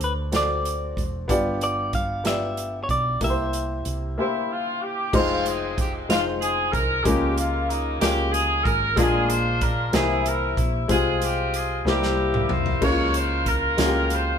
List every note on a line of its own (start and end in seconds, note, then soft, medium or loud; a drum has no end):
0.00 0.93 D2 medium
0.00 0.29 D3 medium
0.00 0.21 C4 medium
0.00 0.21 F#4 medium
0.00 0.22 A4 medium
0.00 0.12 B4 medium
0.00 0.25 D5 medium
0.00 closed hi-hat medium
0.32 1.17 C4 medium
0.32 1.17 F#4 medium
0.32 1.18 A4 medium
0.32 1.18 D5 medium
0.32 snare medium
0.32 closed hi-hat medium
0.36 1.03 D5 medium
0.65 closed hi-hat medium
0.97 1.26 E1 medium
0.97 kick medium
0.97 closed hi-hat soft
1.28 1.89 G1 loud
1.28 2.21 G2 medium
1.28 2.13 B3 medium
1.28 2.14 F4 medium
1.28 2.14 G4 medium
1.28 2.14 D5 loud
1.28 kick medium
1.28 closed hi-hat medium
1.61 1.92 D5 medium
1.61 closed hi-hat medium
1.93 2.86 G1 medium
1.93 2.26 F5 medium
1.93 kick medium
1.93 closed hi-hat medium
2.24 3.09 B3 medium
2.24 3.10 F4 medium
2.24 3.10 G4 medium
2.24 3.10 D5 medium
2.24 2.79 E5 medium
2.24 snare medium
2.24 closed hi-hat medium
2.57 closed hi-hat soft
2.84 2.90 C#5 medium
2.89 3.19 B1 medium
2.89 3.20 D5 medium
2.89 kick medium
2.89 closed hi-hat soft
3.21 3.81 C2 medium
3.21 4.14 C3 medium
3.21 4.06 A#3 medium
3.21 4.06 E4 medium
3.21 4.06 G4 medium
3.21 3.29 A#4 medium
3.21 4.47 E5 medium
3.21 kick medium
3.21 closed hi-hat medium
3.30 4.10 C5 medium
3.53 closed hi-hat medium
3.85 4.16 C2 medium
3.85 closed hi-hat medium
4.18 5.02 A#3 medium
4.18 4.48 E4 medium
4.18 5.03 G4 medium
4.18 5.03 C5 medium
4.18 5.02 E5 medium
4.51 4.82 F4 medium
4.82 5.14 G4 medium
5.13 6.05 F1 loud
5.13 5.98 G#3 medium
5.13 6.07 G#3 medium
5.13 5.98 C4 medium
5.13 6.07 C4 medium
5.13 5.98 D#4 medium
5.13 5.46 F4 medium
5.13 5.99 F4 medium
5.13 5.99 C5 medium
5.13 kick loud
5.13 crash medium
5.46 5.78 G#4 medium
5.46 closed hi-hat medium
5.78 5.92 G4 medium
5.78 kick medium
5.78 closed hi-hat medium
6.09 6.69 F1 medium
6.09 6.94 G#3 medium
6.09 6.94 C4 medium
6.09 6.94 D#4 medium
6.09 6.24 F4 medium
6.09 6.94 F4 medium
6.09 6.95 C5 medium
6.09 snare loud
6.09 closed hi-hat medium
6.41 6.71 G#4 medium
6.41 closed hi-hat medium
6.72 7.03 C2 medium
6.72 7.05 A#4 medium
6.72 kick medium
6.72 closed hi-hat soft
7.04 7.97 C#2 loud
7.04 7.98 C#3 medium
7.04 7.90 G#3 medium
7.04 7.90 A#3 medium
7.04 7.98 A#3 medium
7.04 7.90 C#4 medium
7.04 7.90 F4 medium
7.04 7.37 G4 loud
7.04 7.91 A#4 medium
7.04 kick loud
7.04 closed hi-hat medium
7.36 7.69 F4 medium
7.36 closed hi-hat medium
7.68 8.01 D#4 medium
7.68 closed hi-hat medium
8.01 8.61 C#2 medium
8.01 8.86 G#3 medium
8.01 8.86 A#3 medium
8.01 8.86 C#4 medium
8.01 8.87 F4 medium
8.01 8.31 G4 medium
8.01 8.87 A#4 medium
8.01 snare loud
8.01 closed hi-hat medium
8.32 8.65 G#4 loud
8.32 closed hi-hat medium
8.64 8.95 G#1 medium
8.64 8.97 A#4 loud
8.64 kick medium
8.64 closed hi-hat soft
8.96 9.90 A#1 loud
8.96 9.89 A#2 medium
8.96 9.81 G#3 medium
8.96 9.81 A#3 medium
8.96 9.82 D4 medium
8.96 9.90 D4 medium
8.96 9.82 F4 medium
8.96 9.90 F4 medium
8.96 9.29 G#4 loud
8.96 9.82 A#4 medium
8.96 kick loud
8.96 closed hi-hat medium
9.28 9.61 C5 loud
9.28 closed hi-hat medium
9.61 9.94 A#4 loud
9.61 kick medium
9.61 closed hi-hat medium
9.92 10.54 C2 loud
9.92 10.86 C3 medium
9.92 10.77 E3 medium
9.92 10.78 A#3 medium
9.92 10.78 C4 medium
9.92 10.78 E4 medium
9.92 10.87 E4 medium
9.92 10.26 G#4 loud
9.92 10.78 A#4 medium
9.92 snare loud
9.92 closed hi-hat medium
10.26 10.58 A#4 medium
10.26 closed hi-hat medium
10.57 10.87 A#1 medium
10.57 kick medium
10.57 closed hi-hat soft
10.88 11.82 C2 loud
10.88 11.82 C3 medium
10.88 11.73 G#3 medium
10.88 11.74 C4 medium
10.88 11.83 C4 medium
10.88 11.75 F4 medium
10.88 11.83 F4 medium
10.88 11.20 G#4 loud
10.88 kick loud
10.88 closed hi-hat medium
11.22 11.54 G4 medium
11.22 closed hi-hat medium
11.54 11.87 G#4 medium
11.54 closed hi-hat medium
11.85 12.45 C2 loud
11.85 12.78 C3 medium
11.85 12.70 G3 medium
11.85 12.70 A#3 medium
11.85 12.79 A#3 medium
11.85 12.71 C4 medium
11.85 12.71 E4 medium
11.85 12.47 G4 medium
11.85 12.71 A#4 medium
11.85 snare medium
11.89 12.80 E4 medium
12.03 snare medium
12.34 mid tom medium
12.49 12.79 C2 medium
12.49 12.83 C5 loud
12.49 mid tom loud
12.66 floor tom medium
12.81 13.74 C#2 loud
12.81 13.74 C#3 medium
12.81 13.66 G#3 medium
12.81 13.66 A#3 medium
12.81 13.67 C#4 medium
12.81 12.89 E4 medium
12.81 13.48 F4 medium
12.81 13.67 A#4 medium
12.81 13.47 A#4 medium
12.81 13.15 C#5 loud
12.81 kick loud
12.81 crash medium
12.89 13.70 F4 medium
13.14 13.47 C5 loud
13.14 closed hi-hat medium
13.46 14.38 F4 medium
13.46 14.11 A#4 loud
13.46 kick medium
13.46 closed hi-hat medium
13.77 14.38 C#2 medium
13.77 14.38 G#3 medium
13.77 14.38 A#3 medium
13.77 14.38 C#4 medium
13.77 14.38 F4 medium
13.77 13.85 F#4 medium
13.77 snare loud
13.77 closed hi-hat medium
13.86 14.38 G4 medium
14.10 14.38 C5 loud
14.10 closed hi-hat medium